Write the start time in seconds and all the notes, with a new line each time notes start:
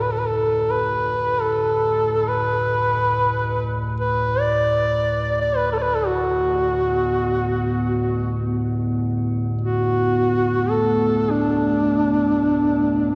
Already playing: D2 A2
0.02 B4
0.12 A4
0.19 B4
0.27 A4
0.71 B4
1.42 A4
2.28 B4
4.00 B4
4.40 D5
5.41 D5
5.57 B4
5.71 A4
5.79 B4 D5
5.95 A4
6.07 F#4
6.79 B3
9.61 F#4
10.43 A3
10.71 A4
11.31 D4